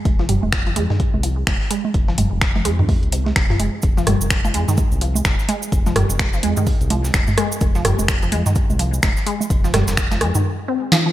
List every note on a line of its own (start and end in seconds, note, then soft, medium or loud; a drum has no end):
0.05 0.39 F1 loud
0.05 kick loud
0.05 closed hi-hat medium
0.05 high conga soft
0.19 0.24 F3 loud
0.19 snare soft
0.29 0.36 G3 medium
0.29 closed hi-hat medium
0.29 mid tom medium
0.43 0.78 F1 medium
0.43 high conga soft
0.53 finger snap loud
0.53 kick loud
0.53 snare loud
0.53 closed hi-hat medium
0.67 0.69 F3 medium
0.67 closed hi-hat soft
0.76 0.88 F2 medium
0.76 0.83 G#3 loud
0.76 closed hi-hat medium
0.76 high conga soft
0.90 0.95 D#3 medium
0.90 snare soft
0.90 mid tom medium
1.00 kick loud
1.00 closed hi-hat medium
1.14 1.44 C2 medium
1.14 high conga soft
1.23 1.27 F3 medium
1.23 closed hi-hat medium
1.47 1.58 F1 loud
1.47 finger snap medium
1.47 kick loud
1.47 snare loud
1.47 closed hi-hat medium
1.47 high conga soft
1.61 snare soft
1.71 1.77 G#3 loud
1.71 closed hi-hat loud
1.71 closed hi-hat medium
1.85 high conga soft
1.94 2.28 F1 loud
1.94 kick loud
1.94 closed hi-hat medium
2.08 2.13 F3 loud
2.08 snare medium
2.18 2.25 G3 medium
2.18 closed hi-hat loud
2.18 closed hi-hat medium
2.18 mid tom medium
2.18 high conga soft
2.32 2.67 F1 medium
2.41 finger snap medium
2.41 kick loud
2.41 snare loud
2.41 closed hi-hat medium
2.56 2.58 F3 medium
2.56 snare soft
2.56 high conga soft
2.65 3.04 F2 medium
2.65 2.72 G#3 loud
2.65 closed hi-hat medium
2.79 2.84 D#3 medium
2.79 mid tom medium
2.89 kick loud
2.89 open hi-hat medium
2.89 high conga soft
3.03 3.33 C2 medium
3.03 closed hi-hat soft
3.12 3.19 C3 medium
3.12 closed hi-hat medium
3.26 snare medium
3.26 high conga soft
3.36 3.69 F1 medium
3.36 finger snap medium
3.36 kick loud
3.36 snare loud
3.36 closed hi-hat medium
3.50 3.57 F3 medium
3.50 snare soft
3.50 mid tom medium
3.60 3.70 G#3 medium
3.60 closed hi-hat medium
3.60 high conga soft
3.82 4.17 F1 loud
3.82 kick loud
3.82 closed hi-hat medium
3.82 cabasa medium
3.97 4.02 F3 loud
3.97 snare soft
3.97 cabasa soft
4.07 4.14 G3 medium
4.07 cross-stick medium
4.07 closed hi-hat medium
4.07 mid tom medium
4.07 high conga soft
4.21 4.56 F1 medium
4.21 cabasa medium
4.30 finger snap medium
4.30 kick loud
4.30 snare loud
4.30 closed hi-hat medium
4.30 cabasa medium
4.45 4.47 F3 medium
4.45 closed hi-hat soft
4.45 high conga soft
4.45 cabasa soft
4.54 4.66 F2 medium
4.54 4.61 G#3 loud
4.54 closed hi-hat medium
4.68 4.73 D#3 medium
4.68 snare soft
4.68 mid tom medium
4.68 cabasa medium
4.77 kick loud
4.77 closed hi-hat medium
4.77 high conga soft
4.77 cabasa medium
4.92 5.22 C2 medium
4.92 cabasa soft
5.01 5.05 F3 medium
5.01 closed hi-hat medium
5.15 high conga soft
5.15 cabasa medium
5.25 5.36 F1 loud
5.25 finger snap medium
5.25 kick loud
5.25 snare loud
5.25 closed hi-hat medium
5.25 cabasa medium
5.39 snare soft
5.39 cabasa soft
5.49 5.55 G#3 loud
5.49 closed hi-hat medium
5.49 high conga soft
5.62 cabasa medium
5.72 6.06 F1 loud
5.72 kick loud
5.72 closed hi-hat medium
5.72 cabasa medium
5.86 5.91 F3 loud
5.86 snare medium
5.86 high conga soft
5.86 cabasa soft
5.96 6.03 G3 medium
5.96 cross-stick medium
5.96 closed hi-hat medium
5.96 mid tom medium
6.10 6.45 F1 medium
6.10 cabasa medium
6.19 finger snap medium
6.19 kick loud
6.19 snare loud
6.19 closed hi-hat medium
6.19 high conga soft
6.19 cabasa medium
6.33 6.36 F3 medium
6.33 snare soft
6.33 cabasa soft
6.43 6.55 F2 medium
6.43 6.50 G#3 loud
6.43 closed hi-hat medium
6.57 6.62 D#3 medium
6.57 mid tom medium
6.57 high conga soft
6.57 cabasa medium
6.67 kick loud
6.67 open hi-hat medium
6.67 cabasa medium
6.81 7.11 C2 medium
6.81 closed hi-hat soft
6.81 cabasa soft
6.90 6.94 F3 medium
6.90 closed hi-hat medium
6.90 high conga soft
7.04 snare medium
7.04 cabasa medium
7.14 7.25 F1 loud
7.14 finger snap medium
7.14 kick loud
7.14 snare loud
7.14 closed hi-hat medium
7.14 cabasa medium
7.27 snare soft
7.27 mid tom medium
7.27 high conga soft
7.27 cabasa soft
7.38 7.44 G#3 loud
7.38 cross-stick medium
7.38 closed hi-hat medium
7.52 cabasa medium
7.61 7.95 F1 loud
7.61 kick loud
7.61 closed hi-hat medium
7.61 high conga soft
7.61 cabasa medium
7.75 7.80 F3 loud
7.75 snare soft
7.75 cabasa soft
7.85 7.92 G3 medium
7.85 cross-stick medium
7.85 closed hi-hat medium
7.85 mid tom medium
7.99 8.34 F1 medium
7.99 high conga soft
7.99 cabasa medium
8.08 finger snap medium
8.08 kick loud
8.08 snare loud
8.08 closed hi-hat medium
8.08 cabasa medium
8.22 8.25 F3 medium
8.22 closed hi-hat soft
8.22 cabasa soft
8.32 8.44 F2 medium
8.32 8.39 G#3 loud
8.32 closed hi-hat medium
8.32 high conga soft
8.46 8.51 D#3 medium
8.46 snare soft
8.46 mid tom medium
8.46 cabasa medium
8.55 kick loud
8.55 closed hi-hat medium
8.55 cabasa medium
8.70 9.00 C2 medium
8.70 high conga soft
8.70 cabasa soft
8.79 8.83 F3 medium
8.79 closed hi-hat medium
8.94 cabasa medium
9.03 9.14 F1 loud
9.03 finger snap medium
9.03 kick loud
9.03 snare loud
9.03 closed hi-hat medium
9.03 high conga soft
9.03 cabasa medium
9.17 snare soft
9.17 cabasa soft
9.27 9.33 G#3 loud
9.27 closed hi-hat medium
9.41 high conga soft
9.41 cabasa medium
9.50 9.84 F1 loud
9.50 kick loud
9.50 closed hi-hat medium
9.50 cabasa medium
9.64 9.69 F3 loud
9.64 snare medium
9.64 cabasa soft
9.74 9.81 G3 medium
9.74 cross-stick medium
9.74 snare loud
9.74 closed hi-hat medium
9.74 mid tom medium
9.74 high conga soft
9.88 10.22 F1 medium
9.88 snare loud
9.88 closed hi-hat medium
9.88 cabasa medium
9.97 finger snap medium
9.97 kick loud
9.97 snare loud
9.97 closed hi-hat medium
9.97 cabasa medium
10.11 10.14 F3 medium
10.11 snare loud
10.11 closed hi-hat medium
10.11 high conga soft
10.11 cabasa soft
10.21 10.32 F2 medium
10.21 10.28 G#3 loud
10.21 cross-stick medium
10.21 closed hi-hat medium
10.35 10.40 D#3 medium
10.35 mid tom medium
10.35 cabasa medium
10.68 10.72 C4 medium
10.92 10.99 F3 loud
10.92 snare loud
11.06 11.12 F3 medium